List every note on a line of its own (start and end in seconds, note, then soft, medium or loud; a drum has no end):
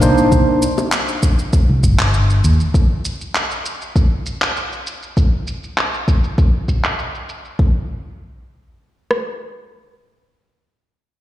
0.01 0.15 C2 medium
0.01 0.62 A#3 medium
0.01 0.62 D4 medium
0.01 0.63 D#4 medium
0.01 0.63 C5 medium
0.01 shaker medium
0.18 shaker soft
0.32 0.45 C2 medium
0.32 kick loud
0.32 shaker soft
0.62 shaker medium
0.78 high bongo medium
0.78 shaker soft
0.92 clap medium
0.92 shaker soft
1.08 shaker soft
1.23 kick loud
1.23 shaker medium
1.39 shaker soft
1.53 kick loud
1.53 shaker soft
1.69 1.85 C2 medium
1.83 1.97 G1 medium
1.83 kick medium
1.83 shaker medium
1.99 2.40 G1 medium
1.99 clap medium
1.99 shaker soft
2.14 shaker soft
2.30 shaker soft
2.44 2.57 D#2 medium
2.44 shaker medium
2.60 shaker soft
2.74 kick loud
2.74 shaker soft
3.05 shaker medium
3.21 shaker soft
3.35 clap medium
3.35 shaker soft
3.51 shaker soft
3.66 shaker medium
3.82 shaker soft
3.96 kick loud
3.96 shaker soft
4.26 shaker medium
4.42 clap medium
4.42 shaker soft
4.57 shaker soft
4.73 shaker soft
4.87 shaker medium
5.03 shaker soft
5.17 kick loud
5.17 shaker soft
5.47 shaker medium
5.64 shaker soft
5.78 clap medium
5.78 shaker soft
5.94 shaker soft
6.08 kick loud
6.08 shaker medium
6.24 shaker soft
6.38 kick loud
6.38 shaker soft
6.68 kick medium
6.68 shaker medium
6.84 clap medium
6.84 shaker soft
6.99 shaker soft
7.15 shaker soft
7.29 shaker medium
7.45 shaker soft
7.59 kick loud
9.11 cross-stick medium